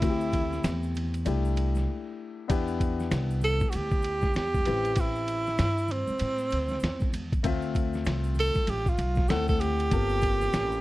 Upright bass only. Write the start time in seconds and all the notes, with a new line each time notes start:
0.02 D2
0.64 E2
1.26 C2
2.50 E2
3.11 C2
3.62 muted upright bass stroke
3.74 D2
4.35 E2
4.67 A1
5.59 G2
6.09 muted upright bass stroke
6.21 A2
6.53 D2
6.83 E2
7.45 D2
8.07 C2
8.56 muted upright bass stroke
8.68 A1
8.98 B1
9.30 D2
9.92 G1
10.53 A1